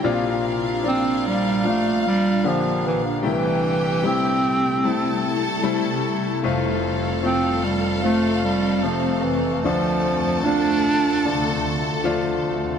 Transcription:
<<
  \new Staff \with { instrumentName = "Violin section" } { \time 4/4 \key f \major \tempo 4 = 75 <d' f''>1 | <g' g''>2 <a' a''>2 | <a' f''>1 | <a' a''>1 | }
  \new Staff \with { instrumentName = "Grand piano" } { \time 4/4 \key f \major << { <f bes d' f'>4 <f bes d' f'>4 <f d' f'>4 <d bes d' g'>4 | <g a c' e'>4 <g a c' e'>4 <g a c' e'>4 <g a c' e'>4 | <f a c' f'>4 <f a c' f'>4 <f a c' f'>4 <c a c'>4 | <f a d' f'>4 <f a d' f'>4 <f a d' f'>4 <f a d' f'>4 | } \\ { <bes,, bes,>1 | <c, c>1 | <f,, f,>1 | <d, d>1 | } >> }
  \new Staff \with { instrumentName = "Ambient pad" } { \clef bass \time 4/4 \key f \major << { <bes, f''>1 | <c g e'>1 | <f, c c'>1 | <d, d>1 | } \\ { d'1 | a1 | a1~ | a1 | } >> }
  \new Staff \with { instrumentName = "Clarinet" } { \clef bass \time 4/4 \key f \major r4 c'8 g8 a8 g8 f8 e8 | e4 c'2 r4 | r4 c'8 g8 a8 g8 f8 e8 | f4 d'2 r4 | }
>>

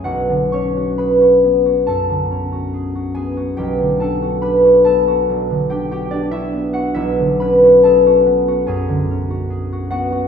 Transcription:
\new Staff \with { instrumentName = "Harp" } { \time 4/4 \key b \dorian \tempo 4 = 71 << { <fis' fis'' gis''>8 <cis'' cis'''>8 <b' b''>4 <a' a''>4. <gis' gis''>8 | <g' g''>8 <a' a''>8 <b' b''>8 <a' a''>4 <g' g''>16 <g' g''>16 <d' d''>16 <e' e''>8 <fis' fis''>16 | <e' e''>8 <b' b''>8 <a' a''>4 <gis' gis''>4. <fis' fis''>8 | } \\ { <b,, cis''>16 d16 cis'16 fis'16 gis'16 fis'16 b16 fis'16 fis,16 d16 cis'16 fis'16 gis'16 fis'16 b16 fis'16 | b,,16 d16 d'16 fis'16 g'16 fis'16 b16 fis'16 b,,16 d16 d'16 fis'16 g'16 fis'16 b8 | b,,16 d16 cis'16 fis'16 gis'16 fis'16 b16 fis'16 fis,16 d16 cis'16 fis'16 gis'16 fis'16 b16 fis'16 | } >> }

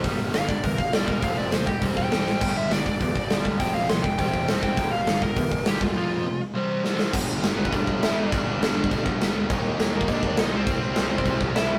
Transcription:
<<
  \new Staff \with { instrumentName = "Lead electric guitar" } { \time 4/4 \key c \lydian \tempo 4 = 203 r4 f''8 d''8 bes'8 f''8 d''8 bes'8 | f''8 d''8 c''8 g'8 r8 g''4. | g''8 e''8 d''8 d''2 r8 | g''8 f''8 c'''8 g''8 g''4 r8 g''8~ |
g''8 f''4 bes'4. g'8 f'8 | f'4. r2 r8 | r4. <b b'>8 <d' d''>4 <e' e''>8 <d' d''>8~ | <d' d''>2~ <d' d''>8 r4. |
r4. <bes bes'>8 <d' d''>4 <ees' ees''>8 <c' c''>8~ | <c' c''>2~ <c' c''>8 r8 <e' e''>4 | }
  \new Staff \with { instrumentName = "Distorted electric guitar" } { \clef bass \time 4/4 \key c \lydian <g, d g>4 <g, d>8 r8 <g, d>8 r8 <g, d g>4 | <f a c'>4 <f a>8 r8 <e g c'>4 <e g c'>4 | <g, d g>4 <g, d>8 r8 <g, d>8 r8 <g, d g>4 | <f a c'>4 <f a>8 r8 <e g c'>4 <e g c'>4 |
<g, d g>4 <g, d>8 r8 <g, d>8 r8 <g, d g>4 | <f a c'>4 <f a>8 r8 <e g c'>4 <e g c'>4 | <g, d g b d'>4. <g, d g b d'>4. <g, d g b d'>4 | <g, d g b d'>4. <g, d g b d'>4. <g, d g b d'>4 |
<ees g bes ees'>4. <ees g bes ees'>4. <ees g bes ees'>8 <c g c' e'>8~ | <c g c' e'>4 <c g c' e'>4. <c g c' e'>4 r8 | }
  \new Staff \with { instrumentName = "Overdriven electric guitar" } { \clef bass \time 4/4 \key c \lydian <g, d g>4 <g, d>8 r8 <g, d>8 r8 <g, d g>4 | <f, c f>4 <f, c>8 r8 <c g c'>4 <c g c'>4 | <g, d g>4 <g, d>8 r8 <g, d>8 r8 <g, d g>4 | <f, c f>4 <f, c>8 r8 <c g c'>4 <c g c'>4 |
<g, d g>4 <g, d>8 r8 <g, d>8 r8 <g, d g>4 | <f, c f>4 <f, c>8 r8 <c g c'>4 <c g c'>4 | <g, d g>2 <g, d g>2 | <g, d g>2 <g, d g>2 |
<ees bes ees'>2 <ees bes ees'>4. <c g c'>8~ | <c g c'>4. <c g c'>2 r8 | }
  \new Staff \with { instrumentName = "Picked electric bass" } { \clef bass \time 4/4 \key c \lydian g,,8 g,,8 g,,8 g,,8 e,8 g,,8 g,,8 e,,8 | f,,8 f,,8 ees,8 e,,8 e,,4 e,,8 a,,8 | g,,8 g,,8 g,,8 g,,8 e,8 g,,8 g,,8 d,8 | f,,8 f,,8 ees,8 e,,8 e,,4 e,,8 fis,,8 |
g,,8 g,,8 g,,8 g,,8 e,8 g,,8 g,,8 d,8 | r1 | g,,4 g,,8 g,,8 g,,8 g,,8 g,,8 g,,8 | g,,8 g,,8 g,,8 g,,8 g,,8 g,,8 g,,8 d,8 |
ees,4 ees,8 ees,8 ees,8 ees,8 b,,8 c,8 | c,8 c,8 c,8 c,8 c,8 c,8 c,8 c,8 | }
  \new DrumStaff \with { instrumentName = "Drums" } \drummode { \time 4/4 <hho bd>4 <hho sn>8 bd8 <hho bd>8 bd8 <hho sn>8 bd8 | <hho bd>4 <hho sn>8 bd8 <hho bd>8 bd8 <hho sn>8 sn8 | <cymc bd>4 <hho sn>8 bd8 <hho bd>8 bd8 <hho sn>8 bd8 | <hho bd>4 <hho sn>8 bd8 <hho bd>8 bd8 <hho sn>8 bd8 |
<hho bd>4 <hho sn>8 bd8 <hho bd>8 bd8 <hho sn>8 bd8 | r4 r4 r4 sn8 sn8 | <cymc bd>4 <cymc sn>8. bd16 <cymc bd>8 bd8 <cymc sn>4 | <cymc bd>4 <cymc sn>8. bd16 <cymc bd>8 bd8 <cymc sn>4 |
<cymc bd>4 <cymc sn>8. bd16 <cymc bd>8 bd8 <cymc sn>4 | <cymc bd>4 <cymc sn>8. bd16 <cymc bd>8 bd8 <cymc sn>4 | }
>>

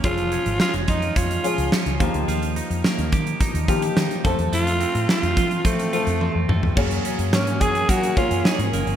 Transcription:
<<
  \new Staff \with { instrumentName = "Analog synth pad" } { \time 4/4 \key ges \lydian \tempo 4 = 107 r1 | r1 | r1 | <ges bes' des'' aes''>1 | }
  \new Staff \with { instrumentName = "Alto saxophone" } { \time 4/4 \key ges \lydian f'4 f'8 ees'8 f'4 r4 | r1 | f'4 f'4 a4. r8 | r4 des'8 aes'8 ges'8 f'4 r8 | }
  \new Staff \with { instrumentName = "Clean electric guitar" } { \time 4/4 \key ges \lydian f8 des'8 aes8 f'8 des'8 f'8 des'8 f8 | f8 ees'8 bes8 g'8 ees'8 f'16 g'16 ees'8 a8 | a8 c'8 a8 f'8 c'8 f'8 c'8 a8 | ges8 des'8 bes8 aes'8 bes8 des'8 aes'8 bes8 | }
  \new Staff \with { instrumentName = "Grand piano" } { \time 4/4 \key ges \lydian <f aes des' aes'>4 r4. <f aes des' aes'>4 <f bes ees' g'>8~ | <f bes ees' g'>4 r4. <f bes ees' g'>4 <f a c' a'>8~ | <f a c' a'>4 r4. <f a c' a'>4 r8 | <ges bes des' aes'>4 r4. <ges bes des' aes'>4 r8 | }
  \new Staff \with { instrumentName = "Fingered electric bass" } { \clef bass \time 4/4 \key ges \lydian f,,8. aes,,16 r16 f,,16 f,8 f,8 r16 des,16 r16 des,16 ees,16 d,16 | ees,8. f,16 r16 ees,16 ees8 r16 ees,16 ees8 ees16 r16 f,16 e,16 | f,8. a,16 r16 f,16 f8 f8 r16 f,8 f,16 f,8 | ges,8 r16 ges,16 aes,8 ges,8 ges8 r16 ges,16 r16 aes,16 ges,,16 g,,16 | }
  \new DrumStaff \with { instrumentName = "Drums" } \drummode { \time 4/4 <hh bd>16 hh16 hh16 hh16 sn16 hh16 <hh bd>16 hh16 <hh bd>16 hh16 hh16 hh16 sn16 hh16 <hh bd>16 hh16 | hh16 hh16 hh16 hh16 sn16 hh16 <hh bd>16 hh16 <hh bd>16 hh16 <hh bd>16 hh16 sn16 hh16 <hh bd>16 hh16 | hh16 hh16 hh16 hh16 sn16 hh16 <hh bd>16 hh16 <hh bd>16 hh16 hh16 hh16 tommh8 toml16 tomfh16 | <cymc bd>16 hh16 hh16 hh16 sn16 hh16 <hh bd>16 hh16 <hh bd>16 hh16 <hh bd>16 hh16 sn16 hh16 hh16 hh16 | }
>>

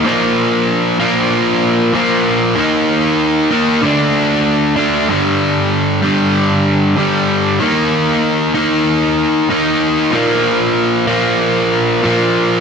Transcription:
\new Staff \with { instrumentName = "Overdriven electric guitar" } { \clef bass \time 4/4 \key bes \major \tempo 4 = 95 <bes, f bes>4. <bes, f bes>4. <bes, f bes>4 | <ees bes ees'>4. <ees bes ees'>8 <d a d'>4. <d a d'>8 | <g, d g>4. <g, d g>4. <g, d g>4 | <ees bes ees'>4. <ees bes ees'>4. <ees bes ees'>4 |
<bes, f bes>4. <bes, f bes>4. <bes, f bes>4 | }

